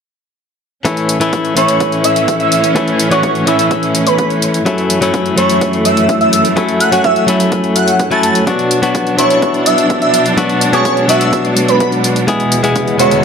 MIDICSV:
0, 0, Header, 1, 6, 480
1, 0, Start_track
1, 0, Key_signature, 3, "major"
1, 0, Tempo, 476190
1, 859, Time_signature, 4, 2, 24, 8
1, 13351, End_track
2, 0, Start_track
2, 0, Title_t, "Digital synth lead"
2, 0, Program_c, 0, 84
2, 1578, Note_on_c, 0, 73, 89
2, 1769, Note_off_c, 0, 73, 0
2, 2059, Note_on_c, 0, 76, 86
2, 2249, Note_off_c, 0, 76, 0
2, 2418, Note_on_c, 0, 76, 84
2, 2495, Note_off_c, 0, 76, 0
2, 2538, Note_on_c, 0, 76, 71
2, 2615, Note_off_c, 0, 76, 0
2, 3138, Note_on_c, 0, 73, 88
2, 3328, Note_off_c, 0, 73, 0
2, 3498, Note_on_c, 0, 76, 82
2, 3575, Note_off_c, 0, 76, 0
2, 3619, Note_on_c, 0, 76, 78
2, 3695, Note_off_c, 0, 76, 0
2, 4098, Note_on_c, 0, 71, 84
2, 4175, Note_off_c, 0, 71, 0
2, 4219, Note_on_c, 0, 71, 72
2, 4295, Note_off_c, 0, 71, 0
2, 5419, Note_on_c, 0, 73, 88
2, 5609, Note_off_c, 0, 73, 0
2, 5897, Note_on_c, 0, 76, 86
2, 6088, Note_off_c, 0, 76, 0
2, 6258, Note_on_c, 0, 76, 87
2, 6335, Note_off_c, 0, 76, 0
2, 6377, Note_on_c, 0, 76, 74
2, 6454, Note_off_c, 0, 76, 0
2, 6857, Note_on_c, 0, 78, 85
2, 6934, Note_off_c, 0, 78, 0
2, 6979, Note_on_c, 0, 78, 68
2, 7056, Note_off_c, 0, 78, 0
2, 7098, Note_on_c, 0, 76, 89
2, 7175, Note_off_c, 0, 76, 0
2, 7218, Note_on_c, 0, 76, 73
2, 7295, Note_off_c, 0, 76, 0
2, 7819, Note_on_c, 0, 78, 88
2, 8009, Note_off_c, 0, 78, 0
2, 8178, Note_on_c, 0, 81, 83
2, 8255, Note_off_c, 0, 81, 0
2, 8298, Note_on_c, 0, 81, 74
2, 8375, Note_off_c, 0, 81, 0
2, 9257, Note_on_c, 0, 73, 84
2, 9448, Note_off_c, 0, 73, 0
2, 9737, Note_on_c, 0, 76, 84
2, 9928, Note_off_c, 0, 76, 0
2, 10098, Note_on_c, 0, 76, 84
2, 10175, Note_off_c, 0, 76, 0
2, 10218, Note_on_c, 0, 76, 75
2, 10295, Note_off_c, 0, 76, 0
2, 10819, Note_on_c, 0, 73, 88
2, 11009, Note_off_c, 0, 73, 0
2, 11178, Note_on_c, 0, 76, 85
2, 11255, Note_off_c, 0, 76, 0
2, 11299, Note_on_c, 0, 76, 75
2, 11375, Note_off_c, 0, 76, 0
2, 11778, Note_on_c, 0, 71, 80
2, 11855, Note_off_c, 0, 71, 0
2, 11898, Note_on_c, 0, 71, 68
2, 11975, Note_off_c, 0, 71, 0
2, 13098, Note_on_c, 0, 73, 87
2, 13288, Note_off_c, 0, 73, 0
2, 13351, End_track
3, 0, Start_track
3, 0, Title_t, "Clean electric guitar"
3, 0, Program_c, 1, 27
3, 853, Note_on_c, 1, 52, 72
3, 855, Note_on_c, 1, 57, 65
3, 863, Note_on_c, 1, 61, 57
3, 865, Note_on_c, 1, 64, 78
3, 1187, Note_off_c, 1, 52, 0
3, 1189, Note_off_c, 1, 57, 0
3, 1191, Note_off_c, 1, 61, 0
3, 1193, Note_off_c, 1, 64, 0
3, 1212, Note_on_c, 1, 52, 89
3, 1214, Note_on_c, 1, 57, 80
3, 1222, Note_on_c, 1, 61, 72
3, 1224, Note_on_c, 1, 64, 102
3, 1546, Note_off_c, 1, 52, 0
3, 1548, Note_off_c, 1, 57, 0
3, 1550, Note_off_c, 1, 61, 0
3, 1552, Note_off_c, 1, 64, 0
3, 1566, Note_on_c, 1, 52, 84
3, 1574, Note_on_c, 1, 57, 75
3, 1582, Note_on_c, 1, 61, 75
3, 1590, Note_on_c, 1, 64, 93
3, 2743, Note_off_c, 1, 52, 0
3, 2747, Note_off_c, 1, 57, 0
3, 2752, Note_off_c, 1, 61, 0
3, 2755, Note_off_c, 1, 64, 0
3, 2772, Note_on_c, 1, 52, 79
3, 2776, Note_on_c, 1, 57, 71
3, 2778, Note_on_c, 1, 61, 71
3, 2788, Note_on_c, 1, 64, 70
3, 3106, Note_off_c, 1, 52, 0
3, 3109, Note_off_c, 1, 57, 0
3, 3111, Note_off_c, 1, 61, 0
3, 3113, Note_off_c, 1, 64, 0
3, 3133, Note_on_c, 1, 52, 89
3, 3135, Note_on_c, 1, 57, 82
3, 3143, Note_on_c, 1, 61, 75
3, 3145, Note_on_c, 1, 66, 100
3, 3467, Note_off_c, 1, 52, 0
3, 3469, Note_off_c, 1, 57, 0
3, 3471, Note_off_c, 1, 61, 0
3, 3473, Note_off_c, 1, 66, 0
3, 3486, Note_on_c, 1, 52, 90
3, 3494, Note_on_c, 1, 57, 80
3, 3502, Note_on_c, 1, 61, 79
3, 3510, Note_on_c, 1, 64, 102
3, 4664, Note_off_c, 1, 52, 0
3, 4667, Note_off_c, 1, 57, 0
3, 4672, Note_off_c, 1, 61, 0
3, 4676, Note_off_c, 1, 64, 0
3, 4692, Note_on_c, 1, 54, 72
3, 4697, Note_on_c, 1, 57, 67
3, 4700, Note_on_c, 1, 61, 66
3, 4707, Note_on_c, 1, 64, 66
3, 5027, Note_off_c, 1, 54, 0
3, 5029, Note_off_c, 1, 57, 0
3, 5031, Note_off_c, 1, 61, 0
3, 5033, Note_off_c, 1, 64, 0
3, 5051, Note_on_c, 1, 54, 99
3, 5059, Note_on_c, 1, 57, 69
3, 5060, Note_on_c, 1, 61, 83
3, 5068, Note_on_c, 1, 64, 90
3, 5387, Note_off_c, 1, 54, 0
3, 5389, Note_off_c, 1, 57, 0
3, 5391, Note_off_c, 1, 61, 0
3, 5393, Note_off_c, 1, 64, 0
3, 5406, Note_on_c, 1, 54, 87
3, 5414, Note_on_c, 1, 57, 74
3, 5423, Note_on_c, 1, 61, 74
3, 5431, Note_on_c, 1, 64, 90
3, 6584, Note_off_c, 1, 54, 0
3, 6588, Note_off_c, 1, 57, 0
3, 6592, Note_off_c, 1, 61, 0
3, 6596, Note_off_c, 1, 64, 0
3, 6613, Note_on_c, 1, 54, 75
3, 6618, Note_on_c, 1, 57, 71
3, 6620, Note_on_c, 1, 61, 75
3, 6630, Note_on_c, 1, 64, 80
3, 6947, Note_off_c, 1, 54, 0
3, 6949, Note_off_c, 1, 57, 0
3, 6951, Note_off_c, 1, 61, 0
3, 6953, Note_off_c, 1, 64, 0
3, 6971, Note_on_c, 1, 54, 82
3, 6980, Note_on_c, 1, 57, 68
3, 6980, Note_on_c, 1, 61, 81
3, 6987, Note_on_c, 1, 66, 85
3, 7307, Note_off_c, 1, 54, 0
3, 7309, Note_off_c, 1, 57, 0
3, 7311, Note_off_c, 1, 61, 0
3, 7313, Note_off_c, 1, 66, 0
3, 7325, Note_on_c, 1, 54, 90
3, 7334, Note_on_c, 1, 57, 79
3, 7342, Note_on_c, 1, 61, 82
3, 7350, Note_on_c, 1, 64, 96
3, 8148, Note_off_c, 1, 54, 0
3, 8152, Note_off_c, 1, 57, 0
3, 8156, Note_off_c, 1, 61, 0
3, 8160, Note_off_c, 1, 64, 0
3, 8172, Note_on_c, 1, 54, 87
3, 8180, Note_on_c, 1, 61, 75
3, 8182, Note_on_c, 1, 57, 70
3, 8186, Note_on_c, 1, 64, 86
3, 8507, Note_off_c, 1, 54, 0
3, 8509, Note_off_c, 1, 57, 0
3, 8511, Note_off_c, 1, 61, 0
3, 8513, Note_off_c, 1, 64, 0
3, 8531, Note_on_c, 1, 54, 71
3, 8539, Note_on_c, 1, 62, 69
3, 8540, Note_on_c, 1, 59, 55
3, 8549, Note_on_c, 1, 66, 66
3, 8867, Note_off_c, 1, 54, 0
3, 8868, Note_off_c, 1, 59, 0
3, 8871, Note_off_c, 1, 62, 0
3, 8873, Note_off_c, 1, 66, 0
3, 8892, Note_on_c, 1, 54, 93
3, 8894, Note_on_c, 1, 59, 85
3, 8903, Note_on_c, 1, 62, 75
3, 8904, Note_on_c, 1, 66, 104
3, 9226, Note_off_c, 1, 54, 0
3, 9229, Note_off_c, 1, 59, 0
3, 9231, Note_off_c, 1, 62, 0
3, 9232, Note_off_c, 1, 66, 0
3, 9246, Note_on_c, 1, 54, 85
3, 9254, Note_on_c, 1, 59, 76
3, 9262, Note_on_c, 1, 62, 77
3, 9270, Note_on_c, 1, 64, 91
3, 10423, Note_off_c, 1, 54, 0
3, 10428, Note_off_c, 1, 59, 0
3, 10432, Note_off_c, 1, 62, 0
3, 10435, Note_off_c, 1, 64, 0
3, 10453, Note_on_c, 1, 54, 75
3, 10455, Note_on_c, 1, 59, 73
3, 10464, Note_on_c, 1, 62, 64
3, 10465, Note_on_c, 1, 66, 89
3, 10787, Note_off_c, 1, 54, 0
3, 10789, Note_off_c, 1, 59, 0
3, 10791, Note_off_c, 1, 62, 0
3, 10793, Note_off_c, 1, 66, 0
3, 10812, Note_on_c, 1, 54, 88
3, 10814, Note_on_c, 1, 59, 80
3, 10823, Note_on_c, 1, 62, 72
3, 10824, Note_on_c, 1, 68, 101
3, 11146, Note_off_c, 1, 54, 0
3, 11148, Note_off_c, 1, 59, 0
3, 11150, Note_off_c, 1, 62, 0
3, 11152, Note_off_c, 1, 68, 0
3, 11165, Note_on_c, 1, 54, 93
3, 11174, Note_on_c, 1, 59, 84
3, 11181, Note_on_c, 1, 62, 80
3, 11190, Note_on_c, 1, 66, 100
3, 12343, Note_off_c, 1, 54, 0
3, 12347, Note_off_c, 1, 59, 0
3, 12351, Note_off_c, 1, 62, 0
3, 12355, Note_off_c, 1, 66, 0
3, 12370, Note_on_c, 1, 56, 69
3, 12380, Note_on_c, 1, 59, 60
3, 12380, Note_on_c, 1, 64, 66
3, 12384, Note_on_c, 1, 68, 82
3, 12706, Note_off_c, 1, 56, 0
3, 12708, Note_off_c, 1, 59, 0
3, 12710, Note_off_c, 1, 64, 0
3, 12713, Note_off_c, 1, 68, 0
3, 12732, Note_on_c, 1, 56, 94
3, 12736, Note_on_c, 1, 59, 89
3, 12739, Note_on_c, 1, 64, 89
3, 12747, Note_on_c, 1, 68, 91
3, 13066, Note_off_c, 1, 56, 0
3, 13069, Note_off_c, 1, 59, 0
3, 13071, Note_off_c, 1, 64, 0
3, 13073, Note_off_c, 1, 68, 0
3, 13086, Note_on_c, 1, 56, 88
3, 13094, Note_on_c, 1, 59, 78
3, 13102, Note_on_c, 1, 64, 80
3, 13111, Note_on_c, 1, 66, 96
3, 13351, Note_off_c, 1, 56, 0
3, 13351, Note_off_c, 1, 59, 0
3, 13351, Note_off_c, 1, 64, 0
3, 13351, Note_off_c, 1, 66, 0
3, 13351, End_track
4, 0, Start_track
4, 0, Title_t, "String section"
4, 0, Program_c, 2, 48
4, 858, Note_on_c, 2, 52, 64
4, 859, Note_on_c, 2, 45, 69
4, 859, Note_on_c, 2, 61, 75
4, 4660, Note_off_c, 2, 45, 0
4, 4660, Note_off_c, 2, 52, 0
4, 4660, Note_off_c, 2, 61, 0
4, 4697, Note_on_c, 2, 52, 65
4, 4698, Note_on_c, 2, 42, 71
4, 4698, Note_on_c, 2, 57, 78
4, 6599, Note_off_c, 2, 52, 0
4, 6619, Note_on_c, 2, 54, 66
4, 8500, Note_off_c, 2, 42, 0
4, 8500, Note_off_c, 2, 57, 0
4, 8519, Note_off_c, 2, 54, 0
4, 8539, Note_on_c, 2, 47, 69
4, 8539, Note_on_c, 2, 54, 66
4, 8539, Note_on_c, 2, 62, 78
4, 10439, Note_off_c, 2, 54, 0
4, 10458, Note_on_c, 2, 56, 67
4, 12340, Note_off_c, 2, 62, 0
4, 12359, Note_off_c, 2, 56, 0
4, 12378, Note_on_c, 2, 40, 71
4, 12378, Note_on_c, 2, 56, 80
4, 13351, Note_off_c, 2, 40, 0
4, 13351, Note_off_c, 2, 47, 0
4, 13351, Note_off_c, 2, 56, 0
4, 13351, End_track
5, 0, Start_track
5, 0, Title_t, "Riser"
5, 0, Program_c, 3, 103
5, 12378, Note_on_c, 3, 60, 71
5, 13351, Note_off_c, 3, 60, 0
5, 13351, End_track
6, 0, Start_track
6, 0, Title_t, "Drums"
6, 858, Note_on_c, 9, 36, 108
6, 859, Note_on_c, 9, 42, 49
6, 959, Note_off_c, 9, 36, 0
6, 959, Note_off_c, 9, 42, 0
6, 979, Note_on_c, 9, 42, 24
6, 1079, Note_off_c, 9, 42, 0
6, 1098, Note_on_c, 9, 42, 90
6, 1199, Note_off_c, 9, 42, 0
6, 1218, Note_on_c, 9, 42, 51
6, 1319, Note_off_c, 9, 42, 0
6, 1338, Note_on_c, 9, 36, 117
6, 1338, Note_on_c, 9, 42, 48
6, 1439, Note_off_c, 9, 36, 0
6, 1439, Note_off_c, 9, 42, 0
6, 1458, Note_on_c, 9, 42, 25
6, 1559, Note_off_c, 9, 42, 0
6, 1578, Note_on_c, 9, 42, 85
6, 1679, Note_off_c, 9, 42, 0
6, 1698, Note_on_c, 9, 42, 49
6, 1799, Note_off_c, 9, 42, 0
6, 1818, Note_on_c, 9, 36, 110
6, 1818, Note_on_c, 9, 42, 52
6, 1919, Note_off_c, 9, 36, 0
6, 1919, Note_off_c, 9, 42, 0
6, 1939, Note_on_c, 9, 42, 26
6, 2039, Note_off_c, 9, 42, 0
6, 2058, Note_on_c, 9, 42, 93
6, 2159, Note_off_c, 9, 42, 0
6, 2179, Note_on_c, 9, 42, 52
6, 2279, Note_off_c, 9, 42, 0
6, 2298, Note_on_c, 9, 36, 110
6, 2298, Note_on_c, 9, 42, 53
6, 2399, Note_off_c, 9, 36, 0
6, 2399, Note_off_c, 9, 42, 0
6, 2419, Note_on_c, 9, 42, 25
6, 2519, Note_off_c, 9, 42, 0
6, 2538, Note_on_c, 9, 42, 89
6, 2639, Note_off_c, 9, 42, 0
6, 2659, Note_on_c, 9, 42, 48
6, 2759, Note_off_c, 9, 42, 0
6, 2778, Note_on_c, 9, 36, 116
6, 2779, Note_on_c, 9, 42, 48
6, 2879, Note_off_c, 9, 36, 0
6, 2879, Note_off_c, 9, 42, 0
6, 2899, Note_on_c, 9, 42, 24
6, 3000, Note_off_c, 9, 42, 0
6, 3019, Note_on_c, 9, 42, 89
6, 3120, Note_off_c, 9, 42, 0
6, 3139, Note_on_c, 9, 42, 48
6, 3240, Note_off_c, 9, 42, 0
6, 3258, Note_on_c, 9, 36, 121
6, 3259, Note_on_c, 9, 42, 48
6, 3359, Note_off_c, 9, 36, 0
6, 3360, Note_off_c, 9, 42, 0
6, 3379, Note_on_c, 9, 42, 24
6, 3480, Note_off_c, 9, 42, 0
6, 3499, Note_on_c, 9, 42, 84
6, 3599, Note_off_c, 9, 42, 0
6, 3619, Note_on_c, 9, 42, 49
6, 3720, Note_off_c, 9, 42, 0
6, 3738, Note_on_c, 9, 36, 112
6, 3738, Note_on_c, 9, 42, 49
6, 3839, Note_off_c, 9, 36, 0
6, 3839, Note_off_c, 9, 42, 0
6, 3859, Note_on_c, 9, 42, 24
6, 3959, Note_off_c, 9, 42, 0
6, 3978, Note_on_c, 9, 42, 87
6, 4079, Note_off_c, 9, 42, 0
6, 4098, Note_on_c, 9, 42, 49
6, 4199, Note_off_c, 9, 42, 0
6, 4218, Note_on_c, 9, 36, 114
6, 4218, Note_on_c, 9, 42, 50
6, 4319, Note_off_c, 9, 36, 0
6, 4319, Note_off_c, 9, 42, 0
6, 4338, Note_on_c, 9, 42, 25
6, 4439, Note_off_c, 9, 42, 0
6, 4458, Note_on_c, 9, 42, 86
6, 4559, Note_off_c, 9, 42, 0
6, 4579, Note_on_c, 9, 42, 47
6, 4679, Note_off_c, 9, 42, 0
6, 4698, Note_on_c, 9, 36, 115
6, 4699, Note_on_c, 9, 42, 46
6, 4799, Note_off_c, 9, 36, 0
6, 4800, Note_off_c, 9, 42, 0
6, 4819, Note_on_c, 9, 42, 23
6, 4920, Note_off_c, 9, 42, 0
6, 4938, Note_on_c, 9, 42, 88
6, 5039, Note_off_c, 9, 42, 0
6, 5059, Note_on_c, 9, 42, 47
6, 5160, Note_off_c, 9, 42, 0
6, 5178, Note_on_c, 9, 36, 123
6, 5179, Note_on_c, 9, 42, 46
6, 5279, Note_off_c, 9, 36, 0
6, 5279, Note_off_c, 9, 42, 0
6, 5299, Note_on_c, 9, 42, 24
6, 5399, Note_off_c, 9, 42, 0
6, 5419, Note_on_c, 9, 42, 79
6, 5519, Note_off_c, 9, 42, 0
6, 5539, Note_on_c, 9, 42, 48
6, 5640, Note_off_c, 9, 42, 0
6, 5658, Note_on_c, 9, 36, 115
6, 5659, Note_on_c, 9, 42, 50
6, 5759, Note_off_c, 9, 36, 0
6, 5760, Note_off_c, 9, 42, 0
6, 5779, Note_on_c, 9, 42, 23
6, 5879, Note_off_c, 9, 42, 0
6, 5898, Note_on_c, 9, 42, 86
6, 5999, Note_off_c, 9, 42, 0
6, 6019, Note_on_c, 9, 42, 48
6, 6119, Note_off_c, 9, 42, 0
6, 6139, Note_on_c, 9, 36, 116
6, 6139, Note_on_c, 9, 42, 47
6, 6239, Note_off_c, 9, 36, 0
6, 6239, Note_off_c, 9, 42, 0
6, 6259, Note_on_c, 9, 42, 23
6, 6360, Note_off_c, 9, 42, 0
6, 6379, Note_on_c, 9, 42, 82
6, 6480, Note_off_c, 9, 42, 0
6, 6499, Note_on_c, 9, 42, 46
6, 6600, Note_off_c, 9, 42, 0
6, 6619, Note_on_c, 9, 36, 116
6, 6619, Note_on_c, 9, 42, 48
6, 6719, Note_off_c, 9, 36, 0
6, 6719, Note_off_c, 9, 42, 0
6, 6739, Note_on_c, 9, 42, 23
6, 6839, Note_off_c, 9, 42, 0
6, 6859, Note_on_c, 9, 42, 84
6, 6960, Note_off_c, 9, 42, 0
6, 6979, Note_on_c, 9, 42, 43
6, 7079, Note_off_c, 9, 42, 0
6, 7098, Note_on_c, 9, 42, 44
6, 7099, Note_on_c, 9, 36, 123
6, 7199, Note_off_c, 9, 36, 0
6, 7199, Note_off_c, 9, 42, 0
6, 7219, Note_on_c, 9, 42, 23
6, 7319, Note_off_c, 9, 42, 0
6, 7338, Note_on_c, 9, 42, 79
6, 7439, Note_off_c, 9, 42, 0
6, 7459, Note_on_c, 9, 42, 47
6, 7560, Note_off_c, 9, 42, 0
6, 7579, Note_on_c, 9, 36, 115
6, 7579, Note_on_c, 9, 42, 47
6, 7679, Note_off_c, 9, 36, 0
6, 7680, Note_off_c, 9, 42, 0
6, 7699, Note_on_c, 9, 42, 23
6, 7800, Note_off_c, 9, 42, 0
6, 7819, Note_on_c, 9, 42, 85
6, 7920, Note_off_c, 9, 42, 0
6, 7939, Note_on_c, 9, 42, 45
6, 8040, Note_off_c, 9, 42, 0
6, 8058, Note_on_c, 9, 36, 115
6, 8059, Note_on_c, 9, 42, 47
6, 8159, Note_off_c, 9, 36, 0
6, 8160, Note_off_c, 9, 42, 0
6, 8179, Note_on_c, 9, 42, 23
6, 8280, Note_off_c, 9, 42, 0
6, 8299, Note_on_c, 9, 42, 81
6, 8400, Note_off_c, 9, 42, 0
6, 8419, Note_on_c, 9, 42, 44
6, 8520, Note_off_c, 9, 42, 0
6, 8539, Note_on_c, 9, 36, 111
6, 8539, Note_on_c, 9, 42, 47
6, 8639, Note_off_c, 9, 36, 0
6, 8640, Note_off_c, 9, 42, 0
6, 8659, Note_on_c, 9, 42, 22
6, 8760, Note_off_c, 9, 42, 0
6, 8779, Note_on_c, 9, 42, 85
6, 8880, Note_off_c, 9, 42, 0
6, 8898, Note_on_c, 9, 42, 46
6, 8999, Note_off_c, 9, 42, 0
6, 9018, Note_on_c, 9, 36, 115
6, 9019, Note_on_c, 9, 42, 46
6, 9119, Note_off_c, 9, 36, 0
6, 9120, Note_off_c, 9, 42, 0
6, 9139, Note_on_c, 9, 42, 25
6, 9240, Note_off_c, 9, 42, 0
6, 9259, Note_on_c, 9, 42, 82
6, 9359, Note_off_c, 9, 42, 0
6, 9379, Note_on_c, 9, 42, 46
6, 9480, Note_off_c, 9, 42, 0
6, 9498, Note_on_c, 9, 36, 111
6, 9499, Note_on_c, 9, 42, 47
6, 9599, Note_off_c, 9, 36, 0
6, 9600, Note_off_c, 9, 42, 0
6, 9619, Note_on_c, 9, 42, 24
6, 9720, Note_off_c, 9, 42, 0
6, 9739, Note_on_c, 9, 42, 82
6, 9839, Note_off_c, 9, 42, 0
6, 9858, Note_on_c, 9, 42, 47
6, 9959, Note_off_c, 9, 42, 0
6, 9978, Note_on_c, 9, 36, 115
6, 9978, Note_on_c, 9, 42, 48
6, 10079, Note_off_c, 9, 36, 0
6, 10079, Note_off_c, 9, 42, 0
6, 10098, Note_on_c, 9, 42, 23
6, 10199, Note_off_c, 9, 42, 0
6, 10218, Note_on_c, 9, 42, 87
6, 10319, Note_off_c, 9, 42, 0
6, 10338, Note_on_c, 9, 42, 47
6, 10439, Note_off_c, 9, 42, 0
6, 10458, Note_on_c, 9, 36, 113
6, 10458, Note_on_c, 9, 42, 50
6, 10559, Note_off_c, 9, 36, 0
6, 10559, Note_off_c, 9, 42, 0
6, 10579, Note_on_c, 9, 42, 24
6, 10679, Note_off_c, 9, 42, 0
6, 10698, Note_on_c, 9, 42, 86
6, 10799, Note_off_c, 9, 42, 0
6, 10818, Note_on_c, 9, 42, 46
6, 10919, Note_off_c, 9, 42, 0
6, 10938, Note_on_c, 9, 36, 112
6, 10938, Note_on_c, 9, 42, 46
6, 11039, Note_off_c, 9, 36, 0
6, 11039, Note_off_c, 9, 42, 0
6, 11059, Note_on_c, 9, 42, 25
6, 11160, Note_off_c, 9, 42, 0
6, 11179, Note_on_c, 9, 42, 82
6, 11279, Note_off_c, 9, 42, 0
6, 11298, Note_on_c, 9, 42, 48
6, 11399, Note_off_c, 9, 42, 0
6, 11418, Note_on_c, 9, 36, 111
6, 11418, Note_on_c, 9, 42, 50
6, 11519, Note_off_c, 9, 36, 0
6, 11519, Note_off_c, 9, 42, 0
6, 11538, Note_on_c, 9, 42, 25
6, 11639, Note_off_c, 9, 42, 0
6, 11658, Note_on_c, 9, 42, 90
6, 11759, Note_off_c, 9, 42, 0
6, 11778, Note_on_c, 9, 42, 51
6, 11879, Note_off_c, 9, 42, 0
6, 11898, Note_on_c, 9, 36, 108
6, 11898, Note_on_c, 9, 42, 51
6, 11999, Note_off_c, 9, 36, 0
6, 11999, Note_off_c, 9, 42, 0
6, 12018, Note_on_c, 9, 42, 24
6, 12119, Note_off_c, 9, 42, 0
6, 12138, Note_on_c, 9, 42, 85
6, 12239, Note_off_c, 9, 42, 0
6, 12258, Note_on_c, 9, 42, 47
6, 12358, Note_off_c, 9, 42, 0
6, 12378, Note_on_c, 9, 36, 106
6, 12378, Note_on_c, 9, 42, 52
6, 12479, Note_off_c, 9, 36, 0
6, 12479, Note_off_c, 9, 42, 0
6, 12498, Note_on_c, 9, 42, 25
6, 12599, Note_off_c, 9, 42, 0
6, 12618, Note_on_c, 9, 42, 90
6, 12719, Note_off_c, 9, 42, 0
6, 12738, Note_on_c, 9, 42, 50
6, 12839, Note_off_c, 9, 42, 0
6, 12858, Note_on_c, 9, 36, 109
6, 12858, Note_on_c, 9, 42, 47
6, 12959, Note_off_c, 9, 36, 0
6, 12959, Note_off_c, 9, 42, 0
6, 12979, Note_on_c, 9, 42, 25
6, 13079, Note_off_c, 9, 42, 0
6, 13098, Note_on_c, 9, 42, 87
6, 13199, Note_off_c, 9, 42, 0
6, 13219, Note_on_c, 9, 42, 49
6, 13319, Note_off_c, 9, 42, 0
6, 13351, End_track
0, 0, End_of_file